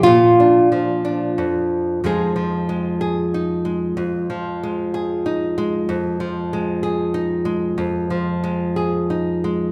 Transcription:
0.00 0.71 F3 medium
0.00 2.01 F4 medium
0.06 1.37 A#2 medium
0.40 1.03 D4 soft
0.72 1.99 F3 medium
1.05 1.99 D4 soft
1.38 2.02 F2 medium
2.04 3.96 F2 medium
2.04 2.35 F3 soft
2.04 2.69 G#3 soft
2.04 3.34 D#4 soft
2.04 3.00 G#4 medium
2.36 4.29 F3 soft
2.69 3.65 G#3 soft
3.01 4.94 G#4 soft
3.34 4.00 D#4 soft
3.65 4.63 G#3 soft
3.97 5.88 F2 medium
4.30 6.20 F3 medium
4.63 5.57 G#3 soft
4.94 6.83 G#4 soft
5.26 5.92 D#4 soft
5.58 6.53 G#3 soft
5.89 7.77 F2 medium
6.20 8.10 F3 medium
6.53 7.45 G#3 medium
6.83 8.76 G#4 medium
7.14 7.81 D#4 medium
7.45 8.42 G#3 soft
7.78 9.72 F2 medium
8.10 9.72 F3 medium
8.44 9.43 G#3 soft
8.76 9.72 G#4 soft
9.10 9.72 D#4 soft
9.44 9.72 G#3 soft

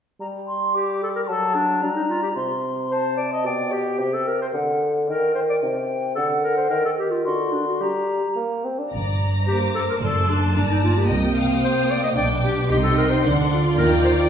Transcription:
0.20 1.30 G3 soft
0.20 0.26 A#5 soft
0.47 0.76 C6 soft
0.74 1.00 G4 soft
0.74 1.29 D6 soft
1.03 1.09 A4 soft
1.16 1.22 A#4 soft
1.27 1.84 F#3 soft
1.27 1.56 A4 soft
1.27 1.83 A5 soft
1.55 1.83 D4 soft
1.81 2.35 G3 soft
1.81 1.89 D4 soft
1.81 2.36 A#5 soft
1.96 2.02 D#4 soft
2.09 2.22 F4 soft
2.23 2.29 G4 soft
2.36 3.47 C3 soft
2.36 2.94 C6 soft
2.91 3.17 C5 soft
2.91 3.49 A5 soft
3.17 3.31 D5 soft
3.33 3.46 D#5 soft
3.45 4.01 B2 soft
3.45 3.74 D5 medium
3.45 3.99 G5 soft
3.72 4.00 G4 soft
3.99 4.53 C3 soft
3.99 4.15 G4 medium
3.99 4.56 G5 soft
4.14 4.29 A4 medium
4.27 4.41 A#4 soft
4.42 4.48 C5 soft
4.54 5.10 D3 soft
4.54 5.11 F#5 soft
5.08 5.64 D#3 soft
5.08 5.33 A#4 soft
5.08 5.62 G5 soft
5.34 5.41 C5 soft
5.49 5.55 D5 soft
5.63 6.18 C3 soft
5.63 6.15 G5 soft
6.16 6.69 D3 soft
6.16 6.28 A4 medium
6.16 6.69 F#5 soft
6.43 6.56 A#4 soft
6.57 6.70 C5 soft
6.70 7.27 D#3 soft
6.70 6.83 A#4 medium
6.70 7.00 G5 soft
6.85 6.91 A4 soft
6.98 7.12 G4 soft
7.11 7.24 F4 soft
7.25 7.80 D3 soft
7.25 7.54 F#4 soft
7.25 7.84 C6 soft
7.52 7.66 D4 soft
7.67 7.82 F#4 soft
7.80 8.21 G3 soft
7.80 8.37 G4 soft
7.80 8.66 A#5 soft
8.36 8.66 A#3 soft
8.65 8.80 C4 soft
8.79 8.93 D4 soft
8.92 9.44 G1 soft
8.92 9.98 G2 soft
8.92 9.43 D5 soft
8.92 9.98 A#5 soft
8.92 9.44 A#5 soft
9.47 9.98 A#3 soft
9.47 9.60 G4 soft
9.47 10.02 C5 soft
9.47 10.02 D6 soft
9.75 9.81 A4 soft
9.90 9.95 A#4 soft
10.02 10.52 F#1 soft
10.02 10.55 F#2 soft
10.02 10.56 A3 soft
10.02 10.32 A4 soft
10.02 10.54 D5 soft
10.02 11.10 A5 soft
10.02 10.55 C6 soft
10.30 10.56 D4 soft
10.55 11.06 G1 soft
10.55 11.09 G2 soft
10.55 12.13 A#3 soft
10.55 10.62 D4 soft
10.55 11.08 D5 soft
10.55 11.09 A#5 soft
10.71 10.83 D#4 soft
10.84 10.99 F4 soft
10.98 11.10 G4 soft
11.09 11.59 C2 soft
11.09 12.17 C3 soft
11.09 11.35 D#5 soft
11.09 12.14 G5 soft
11.09 12.16 D#6 soft
11.37 12.15 F5 soft
11.63 11.93 C5 medium
11.91 12.03 D5 medium
12.04 12.10 D#5 medium
12.16 12.67 B1 soft
12.16 12.70 B2 soft
12.16 12.70 D4 medium
12.16 12.29 D5 medium
12.16 12.69 G5 soft
12.16 12.69 D6 soft
12.44 12.70 G4 medium
12.70 13.21 C2 soft
12.70 13.24 C3 soft
12.70 13.25 D#4 medium
12.70 12.77 G4 medium
12.70 13.24 D#5 soft
12.70 13.23 G5 soft
12.70 13.79 C6 soft
12.83 12.96 A4 medium
12.97 13.11 A#4 medium
13.10 13.24 C5 medium
13.24 13.75 D2 soft
13.24 13.79 D3 soft
13.24 13.51 D4 soft
13.24 14.29 D5 soft
13.24 13.50 F#5 soft
13.51 14.29 F4 medium
13.51 13.59 F#5 soft
13.77 14.29 D#2 soft
13.77 14.29 D#3 soft
13.77 13.90 A#4 medium
13.77 14.29 G5 soft
13.77 14.29 A#5 soft
14.05 14.11 C5 soft
14.19 14.29 D5 soft

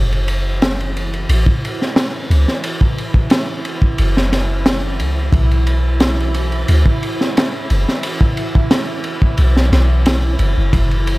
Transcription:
0.00 1.26 F#1 medium
0.00 11.18 E3 medium
0.00 11.18 E4 medium
0.12 ride soft
0.28 ride medium
0.62 snare loud
0.62 ride medium
0.80 ride soft
0.97 ride medium
1.13 ride soft
1.29 1.45 A1 medium
1.29 ride medium
1.46 kick medium
1.65 ride medium
1.82 snare soft
1.96 snare loud
1.96 ride medium
2.30 2.46 C#2 medium
2.30 ride medium
2.48 snare soft
2.63 ride medium
2.81 kick medium
2.98 ride medium
3.14 kick medium
3.30 snare loud
3.30 ride medium
3.65 ride medium
3.82 kick medium
3.98 5.01 F#1 medium
3.98 ride medium
4.17 snare soft
4.32 snare soft
4.32 ride medium
4.66 snare loud
4.66 ride medium
5.00 5.30 C#2 loud
5.00 ride medium
5.32 6.65 B1 loud
5.32 kick loud
5.32 ride medium
5.51 ride soft
5.67 ride medium
6.00 snare loud
6.00 ride medium
6.20 ride soft
6.34 ride medium
6.52 ride soft
6.68 6.84 D2 medium
6.68 ride medium
6.86 kick medium
7.03 ride medium
7.21 snare soft
7.37 snare loud
7.37 ride medium
7.70 7.86 F#1 medium
7.70 ride medium
7.88 snare soft
8.03 ride medium
8.21 kick medium
8.37 ride medium
8.55 kick medium
8.71 snare loud
8.71 ride medium
9.04 ride medium
9.22 kick medium
9.37 9.71 B1 medium
9.37 ride medium
9.57 snare soft
9.72 10.36 B1 medium
9.72 snare soft
9.72 ride medium
10.06 snare loud
10.06 ride medium
10.39 10.55 F#1 medium
10.39 ride medium
10.57 10.71 F#1 medium
10.73 11.18 F#1 medium
10.73 kick loud
10.73 ride medium
10.91 ride soft
11.07 ride medium

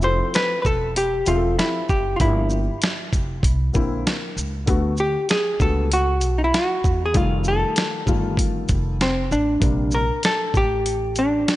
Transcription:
0.00 0.19 F1 loud
0.00 0.91 F3 medium
0.00 0.91 C4 medium
0.00 shaker soft
0.04 0.92 E4 medium
0.04 0.92 A4 medium
0.04 0.35 C5 loud
0.34 0.59 B4 loud
0.34 snare loud
0.34 closed hi-hat medium
0.62 1.23 E1 medium
0.62 0.97 A4 loud
0.62 0.66 B4 medium
0.62 kick medium
0.62 shaker medium
0.96 1.29 G4 medium
0.96 closed hi-hat loud
1.26 1.55 E1 medium
1.26 1.74 F3 medium
1.26 1.74 C4 medium
1.26 1.58 F4 medium
1.26 1.36 G#4 medium
1.26 1.74 E5 medium
1.26 closed hi-hat medium
1.26 shaker medium
1.35 1.78 A4 medium
1.59 1.90 E4 medium
1.59 snare loud
1.59 closed hi-hat medium
1.89 2.17 F#1 loud
1.89 2.16 G4 medium
1.89 kick medium
1.89 shaker soft
2.16 2.67 G1 loud
2.16 2.58 F3 medium
2.16 2.59 A#3 medium
2.16 2.20 F4 medium
2.16 kick loud
2.16 closed hi-hat medium
2.21 2.59 D4 medium
2.21 4.02 E4 medium
2.21 2.60 G4 medium
2.50 shaker soft
2.82 snare loud
2.82 closed hi-hat medium
3.13 3.45 F1 medium
3.13 kick medium
3.13 closed hi-hat medium
3.13 shaker medium
3.43 3.71 C2 medium
3.43 kick medium
3.43 closed hi-hat medium
3.73 4.03 A#1 medium
3.73 4.13 D3 medium
3.73 4.13 A#3 medium
3.73 4.13 C4 medium
3.73 4.14 E4 medium
3.73 kick medium
3.73 shaker soft
4.07 snare loud
4.07 closed hi-hat medium
4.37 4.64 C#2 medium
4.37 shaker medium
4.66 5.14 D2 loud
4.66 4.91 D3 medium
4.66 4.91 A3 medium
4.66 4.92 B3 medium
4.66 4.92 F#4 medium
4.66 kick loud
4.66 closed hi-hat medium
4.97 5.30 G4 medium
4.97 shaker soft
5.29 5.61 G#4 medium
5.29 snare loud
5.29 closed hi-hat medium
5.59 6.22 C#2 medium
5.59 5.84 D3 medium
5.59 5.84 A3 medium
5.59 5.85 B3 medium
5.59 5.85 F#4 medium
5.59 5.93 A4 medium
5.59 kick medium
5.59 shaker medium
5.92 6.39 F#4 medium
5.92 closed hi-hat loud
6.21 6.50 B1 medium
6.21 closed hi-hat medium
6.21 shaker soft
6.38 6.42 D#4 medium
6.44 6.54 E4 medium
6.54 7.05 F#4 medium
6.54 snare loud
6.54 closed hi-hat medium
6.84 7.12 E2 medium
6.84 kick medium
6.84 shaker soft
7.06 7.17 G#4 medium
7.13 7.62 F1 loud
7.13 8.02 D#3 medium
7.13 8.03 G3 medium
7.13 8.03 A3 medium
7.13 8.04 F4 medium
7.13 7.47 F4 medium
7.13 kick loud
7.13 closed hi-hat medium
7.44 8.29 A4 medium
7.44 shaker soft
7.76 snare loud
7.76 closed hi-hat medium
8.06 8.65 G1 loud
8.06 8.95 D#3 medium
8.06 8.95 G3 medium
8.06 8.96 A3 medium
8.06 8.96 F4 medium
8.06 kick medium
8.06 shaker medium
8.29 8.66 G4 medium
8.37 kick medium
8.37 closed hi-hat loud
8.69 9.27 F1 medium
8.69 kick medium
8.69 closed hi-hat soft
8.69 shaker medium
9.01 9.32 C4 medium
9.01 snare loud
9.01 closed hi-hat medium
9.31 9.59 A1 medium
9.31 9.95 D4 medium
9.31 shaker soft
9.60 10.09 A#1 loud
9.60 10.00 C3 medium
9.60 10.00 G3 medium
9.60 10.01 A#3 medium
9.60 10.01 D4 medium
9.60 kick loud
9.60 closed hi-hat medium
9.91 10.25 A#4 medium
9.91 shaker soft
10.23 10.56 A4 loud
10.23 snare loud
10.23 closed hi-hat medium
10.54 11.43 A1 medium
10.54 11.20 G4 loud
10.54 kick medium
10.54 shaker medium
10.86 closed hi-hat medium
11.16 11.56 D4 medium
11.16 closed hi-hat medium
11.16 shaker soft
11.48 snare loud
11.48 closed hi-hat medium

